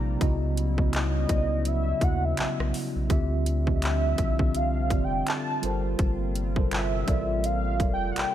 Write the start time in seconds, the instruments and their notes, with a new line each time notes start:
Already playing: sub bass A#1, tine electric piano C3 A#3 D#4 F4 D5, analog synth pad G3 A#3 C4 F4 D5
0.19 sub bass C#2, tine electric piano C#3 B3 E4 F#4 D#5, analog synth pad F#3 B3 C#4 E4, kick, closed hi-hat
0.57 closed hi-hat
0.76 tine electric piano C#3 B3 E4 F#4 D#5, kick
0.93 soft synth lead D#5, clap, closed hi-hat
1.27 sub bass C#2, tine electric piano C#3 B3 E4 F#4 D5, kick, closed hi-hat
1.38 tine electric piano D#5
1.65 soft synth lead E5, closed hi-hat
2.00 sub bass D#2, tine electric piano C#3 B3 E4 F#4 D#5, kick, closed hi-hat
2.04 soft synth lead F#5
2.10 tine electric piano E5
2.25 soft synth lead E5
2.37 sub bass B1, clap, closed hi-hat
2.59 sub bass B1, cross-stick
2.74 open hi-hat
2.96 sub bass B1
3.08 sub bass D2, tine electric piano D3 C4 F4 G4 E5, analog synth pad F3 G3 C4 D4 F4, kick, closed hi-hat
3.46 closed hi-hat
3.65 tine electric piano D3 C4 F4 G4 D#5, kick
3.76 tine electric piano E5
3.82 soft synth lead E5, clap, closed hi-hat
4.18 sub bass C2, kick, closed hi-hat
4.37 tine electric piano D3 C4 F4 G4 E5, kick
4.55 soft synth lead F5, closed hi-hat
4.89 sub bass F1, tine electric piano D3 C4 F4 G4 D5, kick, closed hi-hat
5.04 soft synth lead G5
5.27 soft synth lead A5, clap, closed hi-hat
5.61 sub bass G1, analog synth pad C3 A#3 C4, tine electric piano G3 F4 A4 A#4 C5, closed hi-hat
5.99 sub bass G1, kick, closed hi-hat
6.35 closed hi-hat
6.55 tine electric piano G3 F4 A4 A#4 C5, kick
6.71 soft synth lead E5, clap, closed hi-hat
7.06 sub bass A1, tine electric piano G3 F4 A4 A#4 D5, kick, closed hi-hat
7.39 soft synth lead E5
7.44 soft synth lead F5, closed hi-hat
7.78 sub bass F1, tine electric piano G3 F4 A4 A#4 D5, kick, closed hi-hat
7.94 soft synth lead G5
8.12 soft synth lead F#5
8.16 sub bass A1, soft synth lead G5, clap, closed hi-hat